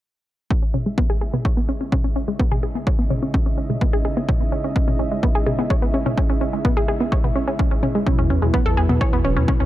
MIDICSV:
0, 0, Header, 1, 6, 480
1, 0, Start_track
1, 0, Key_signature, 4, "minor"
1, 0, Tempo, 472441
1, 514, Time_signature, 4, 2, 24, 8
1, 9810, End_track
2, 0, Start_track
2, 0, Title_t, "Analog synth pad"
2, 0, Program_c, 0, 89
2, 513, Note_on_c, 0, 61, 77
2, 513, Note_on_c, 0, 76, 83
2, 514, Note_on_c, 0, 68, 64
2, 514, Note_on_c, 0, 75, 67
2, 8153, Note_off_c, 0, 61, 0
2, 8153, Note_off_c, 0, 68, 0
2, 8153, Note_off_c, 0, 75, 0
2, 8153, Note_off_c, 0, 76, 0
2, 8191, Note_on_c, 0, 66, 65
2, 8192, Note_on_c, 0, 71, 83
2, 8193, Note_on_c, 0, 64, 72
2, 9810, Note_off_c, 0, 64, 0
2, 9810, Note_off_c, 0, 66, 0
2, 9810, Note_off_c, 0, 71, 0
2, 9810, End_track
3, 0, Start_track
3, 0, Title_t, "Synth arpeggio sound"
3, 0, Program_c, 1, 84
3, 513, Note_on_c, 1, 61, 75
3, 573, Note_off_c, 1, 61, 0
3, 636, Note_on_c, 1, 61, 74
3, 693, Note_off_c, 1, 61, 0
3, 753, Note_on_c, 1, 61, 76
3, 842, Note_off_c, 1, 61, 0
3, 876, Note_on_c, 1, 56, 72
3, 910, Note_off_c, 1, 56, 0
3, 994, Note_on_c, 1, 59, 105
3, 1083, Note_off_c, 1, 59, 0
3, 1115, Note_on_c, 1, 68, 94
3, 1201, Note_off_c, 1, 68, 0
3, 1234, Note_on_c, 1, 68, 73
3, 1293, Note_off_c, 1, 68, 0
3, 1357, Note_on_c, 1, 59, 73
3, 1414, Note_off_c, 1, 59, 0
3, 1474, Note_on_c, 1, 73, 78
3, 1533, Note_off_c, 1, 73, 0
3, 1596, Note_on_c, 1, 59, 76
3, 1682, Note_off_c, 1, 59, 0
3, 1714, Note_on_c, 1, 61, 77
3, 1773, Note_off_c, 1, 61, 0
3, 1836, Note_on_c, 1, 61, 76
3, 1871, Note_off_c, 1, 61, 0
3, 1953, Note_on_c, 1, 61, 81
3, 2013, Note_off_c, 1, 61, 0
3, 2076, Note_on_c, 1, 61, 72
3, 2133, Note_off_c, 1, 61, 0
3, 2194, Note_on_c, 1, 61, 78
3, 2283, Note_off_c, 1, 61, 0
3, 2316, Note_on_c, 1, 56, 74
3, 2350, Note_off_c, 1, 56, 0
3, 2434, Note_on_c, 1, 59, 98
3, 2523, Note_off_c, 1, 59, 0
3, 2555, Note_on_c, 1, 68, 99
3, 2641, Note_off_c, 1, 68, 0
3, 2673, Note_on_c, 1, 68, 73
3, 2733, Note_off_c, 1, 68, 0
3, 2796, Note_on_c, 1, 59, 70
3, 2853, Note_off_c, 1, 59, 0
3, 2914, Note_on_c, 1, 73, 79
3, 2973, Note_off_c, 1, 73, 0
3, 3036, Note_on_c, 1, 59, 70
3, 3121, Note_off_c, 1, 59, 0
3, 3153, Note_on_c, 1, 61, 74
3, 3213, Note_off_c, 1, 61, 0
3, 3277, Note_on_c, 1, 61, 74
3, 3311, Note_off_c, 1, 61, 0
3, 3394, Note_on_c, 1, 61, 78
3, 3453, Note_off_c, 1, 61, 0
3, 3516, Note_on_c, 1, 61, 74
3, 3573, Note_off_c, 1, 61, 0
3, 3634, Note_on_c, 1, 61, 72
3, 3723, Note_off_c, 1, 61, 0
3, 3756, Note_on_c, 1, 56, 69
3, 3791, Note_off_c, 1, 56, 0
3, 3874, Note_on_c, 1, 59, 97
3, 3963, Note_off_c, 1, 59, 0
3, 3996, Note_on_c, 1, 68, 101
3, 4081, Note_off_c, 1, 68, 0
3, 4113, Note_on_c, 1, 68, 81
3, 4173, Note_off_c, 1, 68, 0
3, 4236, Note_on_c, 1, 59, 74
3, 4293, Note_off_c, 1, 59, 0
3, 4353, Note_on_c, 1, 73, 82
3, 4413, Note_off_c, 1, 73, 0
3, 4476, Note_on_c, 1, 59, 70
3, 4562, Note_off_c, 1, 59, 0
3, 4594, Note_on_c, 1, 61, 76
3, 4653, Note_off_c, 1, 61, 0
3, 4717, Note_on_c, 1, 61, 76
3, 4751, Note_off_c, 1, 61, 0
3, 4834, Note_on_c, 1, 61, 84
3, 4893, Note_off_c, 1, 61, 0
3, 4956, Note_on_c, 1, 61, 76
3, 5013, Note_off_c, 1, 61, 0
3, 5073, Note_on_c, 1, 61, 71
3, 5162, Note_off_c, 1, 61, 0
3, 5197, Note_on_c, 1, 56, 75
3, 5231, Note_off_c, 1, 56, 0
3, 5313, Note_on_c, 1, 59, 92
3, 5403, Note_off_c, 1, 59, 0
3, 5437, Note_on_c, 1, 68, 98
3, 5522, Note_off_c, 1, 68, 0
3, 5553, Note_on_c, 1, 68, 75
3, 5613, Note_off_c, 1, 68, 0
3, 5676, Note_on_c, 1, 59, 73
3, 5733, Note_off_c, 1, 59, 0
3, 5794, Note_on_c, 1, 73, 80
3, 5853, Note_off_c, 1, 73, 0
3, 5916, Note_on_c, 1, 59, 75
3, 6002, Note_off_c, 1, 59, 0
3, 6034, Note_on_c, 1, 61, 80
3, 6093, Note_off_c, 1, 61, 0
3, 6157, Note_on_c, 1, 61, 79
3, 6191, Note_off_c, 1, 61, 0
3, 6275, Note_on_c, 1, 61, 78
3, 6334, Note_off_c, 1, 61, 0
3, 6397, Note_on_c, 1, 61, 75
3, 6454, Note_off_c, 1, 61, 0
3, 6514, Note_on_c, 1, 61, 73
3, 6603, Note_off_c, 1, 61, 0
3, 6637, Note_on_c, 1, 56, 71
3, 6671, Note_off_c, 1, 56, 0
3, 6754, Note_on_c, 1, 59, 103
3, 6843, Note_off_c, 1, 59, 0
3, 6877, Note_on_c, 1, 68, 93
3, 6962, Note_off_c, 1, 68, 0
3, 6994, Note_on_c, 1, 68, 73
3, 7053, Note_off_c, 1, 68, 0
3, 7117, Note_on_c, 1, 59, 69
3, 7174, Note_off_c, 1, 59, 0
3, 7233, Note_on_c, 1, 73, 75
3, 7293, Note_off_c, 1, 73, 0
3, 7356, Note_on_c, 1, 59, 72
3, 7442, Note_off_c, 1, 59, 0
3, 7473, Note_on_c, 1, 61, 76
3, 7533, Note_off_c, 1, 61, 0
3, 7596, Note_on_c, 1, 61, 75
3, 7630, Note_off_c, 1, 61, 0
3, 7714, Note_on_c, 1, 61, 79
3, 7773, Note_off_c, 1, 61, 0
3, 7836, Note_on_c, 1, 61, 71
3, 7893, Note_off_c, 1, 61, 0
3, 7954, Note_on_c, 1, 61, 80
3, 8043, Note_off_c, 1, 61, 0
3, 8077, Note_on_c, 1, 56, 79
3, 8111, Note_off_c, 1, 56, 0
3, 8194, Note_on_c, 1, 61, 79
3, 8253, Note_off_c, 1, 61, 0
3, 8317, Note_on_c, 1, 61, 75
3, 8374, Note_off_c, 1, 61, 0
3, 8434, Note_on_c, 1, 61, 71
3, 8523, Note_off_c, 1, 61, 0
3, 8557, Note_on_c, 1, 56, 73
3, 8591, Note_off_c, 1, 56, 0
3, 8673, Note_on_c, 1, 59, 101
3, 8762, Note_off_c, 1, 59, 0
3, 8796, Note_on_c, 1, 69, 93
3, 8881, Note_off_c, 1, 69, 0
3, 8913, Note_on_c, 1, 68, 75
3, 8973, Note_off_c, 1, 68, 0
3, 9036, Note_on_c, 1, 59, 72
3, 9093, Note_off_c, 1, 59, 0
3, 9153, Note_on_c, 1, 73, 76
3, 9213, Note_off_c, 1, 73, 0
3, 9277, Note_on_c, 1, 59, 77
3, 9362, Note_off_c, 1, 59, 0
3, 9393, Note_on_c, 1, 61, 75
3, 9453, Note_off_c, 1, 61, 0
3, 9516, Note_on_c, 1, 61, 69
3, 9550, Note_off_c, 1, 61, 0
3, 9632, Note_on_c, 1, 61, 80
3, 9692, Note_off_c, 1, 61, 0
3, 9756, Note_on_c, 1, 61, 72
3, 9810, Note_off_c, 1, 61, 0
3, 9810, End_track
4, 0, Start_track
4, 0, Title_t, "Analog polysynth"
4, 0, Program_c, 2, 90
4, 8194, Note_on_c, 2, 47, 84
4, 8194, Note_on_c, 2, 54, 76
4, 8194, Note_on_c, 2, 64, 91
4, 8527, Note_off_c, 2, 47, 0
4, 8527, Note_off_c, 2, 54, 0
4, 8527, Note_off_c, 2, 64, 0
4, 8557, Note_on_c, 2, 47, 73
4, 8557, Note_on_c, 2, 54, 72
4, 8557, Note_on_c, 2, 64, 84
4, 8886, Note_off_c, 2, 47, 0
4, 8886, Note_off_c, 2, 54, 0
4, 8886, Note_off_c, 2, 64, 0
4, 8914, Note_on_c, 2, 47, 75
4, 8914, Note_on_c, 2, 54, 71
4, 8914, Note_on_c, 2, 64, 80
4, 9810, Note_off_c, 2, 47, 0
4, 9810, Note_off_c, 2, 54, 0
4, 9810, Note_off_c, 2, 64, 0
4, 9810, End_track
5, 0, Start_track
5, 0, Title_t, "Analog synth bass"
5, 0, Program_c, 3, 38
5, 8316, Note_on_c, 3, 40, 86
5, 8411, Note_off_c, 3, 40, 0
5, 8432, Note_on_c, 3, 40, 96
5, 8532, Note_off_c, 3, 40, 0
5, 8555, Note_on_c, 3, 40, 86
5, 8651, Note_off_c, 3, 40, 0
5, 8794, Note_on_c, 3, 40, 81
5, 8890, Note_off_c, 3, 40, 0
5, 8913, Note_on_c, 3, 40, 93
5, 9012, Note_off_c, 3, 40, 0
5, 9035, Note_on_c, 3, 40, 84
5, 9131, Note_off_c, 3, 40, 0
5, 9276, Note_on_c, 3, 40, 84
5, 9371, Note_off_c, 3, 40, 0
5, 9393, Note_on_c, 3, 28, 101
5, 9515, Note_on_c, 3, 40, 93
5, 9531, Note_off_c, 3, 28, 0
5, 9611, Note_off_c, 3, 40, 0
5, 9755, Note_on_c, 3, 40, 82
5, 9810, Note_off_c, 3, 40, 0
5, 9810, End_track
6, 0, Start_track
6, 0, Title_t, "Drums"
6, 513, Note_on_c, 9, 36, 112
6, 615, Note_off_c, 9, 36, 0
6, 754, Note_on_c, 9, 47, 90
6, 856, Note_off_c, 9, 47, 0
6, 993, Note_on_c, 9, 36, 124
6, 1095, Note_off_c, 9, 36, 0
6, 1357, Note_on_c, 9, 47, 88
6, 1458, Note_off_c, 9, 47, 0
6, 1473, Note_on_c, 9, 36, 108
6, 1575, Note_off_c, 9, 36, 0
6, 1954, Note_on_c, 9, 36, 106
6, 1955, Note_on_c, 9, 47, 87
6, 2055, Note_off_c, 9, 36, 0
6, 2057, Note_off_c, 9, 47, 0
6, 2434, Note_on_c, 9, 36, 114
6, 2535, Note_off_c, 9, 36, 0
6, 2558, Note_on_c, 9, 47, 87
6, 2660, Note_off_c, 9, 47, 0
6, 2914, Note_on_c, 9, 36, 121
6, 3016, Note_off_c, 9, 36, 0
6, 3156, Note_on_c, 9, 47, 90
6, 3257, Note_off_c, 9, 47, 0
6, 3394, Note_on_c, 9, 36, 113
6, 3496, Note_off_c, 9, 36, 0
6, 3758, Note_on_c, 9, 47, 83
6, 3860, Note_off_c, 9, 47, 0
6, 3874, Note_on_c, 9, 36, 119
6, 3976, Note_off_c, 9, 36, 0
6, 4354, Note_on_c, 9, 36, 119
6, 4355, Note_on_c, 9, 47, 87
6, 4456, Note_off_c, 9, 36, 0
6, 4457, Note_off_c, 9, 47, 0
6, 4834, Note_on_c, 9, 36, 121
6, 4936, Note_off_c, 9, 36, 0
6, 4958, Note_on_c, 9, 47, 81
6, 5059, Note_off_c, 9, 47, 0
6, 5314, Note_on_c, 9, 36, 115
6, 5416, Note_off_c, 9, 36, 0
6, 5556, Note_on_c, 9, 47, 85
6, 5657, Note_off_c, 9, 47, 0
6, 5794, Note_on_c, 9, 36, 118
6, 5896, Note_off_c, 9, 36, 0
6, 6159, Note_on_c, 9, 47, 85
6, 6260, Note_off_c, 9, 47, 0
6, 6274, Note_on_c, 9, 36, 119
6, 6376, Note_off_c, 9, 36, 0
6, 6755, Note_on_c, 9, 36, 125
6, 6756, Note_on_c, 9, 47, 80
6, 6856, Note_off_c, 9, 36, 0
6, 6858, Note_off_c, 9, 47, 0
6, 7234, Note_on_c, 9, 36, 112
6, 7336, Note_off_c, 9, 36, 0
6, 7359, Note_on_c, 9, 47, 91
6, 7460, Note_off_c, 9, 47, 0
6, 7715, Note_on_c, 9, 36, 115
6, 7816, Note_off_c, 9, 36, 0
6, 7956, Note_on_c, 9, 47, 85
6, 8057, Note_off_c, 9, 47, 0
6, 8194, Note_on_c, 9, 36, 112
6, 8296, Note_off_c, 9, 36, 0
6, 8436, Note_on_c, 9, 47, 86
6, 8537, Note_off_c, 9, 47, 0
6, 8674, Note_on_c, 9, 36, 122
6, 8776, Note_off_c, 9, 36, 0
6, 9038, Note_on_c, 9, 47, 87
6, 9139, Note_off_c, 9, 47, 0
6, 9154, Note_on_c, 9, 36, 111
6, 9256, Note_off_c, 9, 36, 0
6, 9634, Note_on_c, 9, 36, 111
6, 9635, Note_on_c, 9, 47, 89
6, 9736, Note_off_c, 9, 36, 0
6, 9737, Note_off_c, 9, 47, 0
6, 9810, End_track
0, 0, End_of_file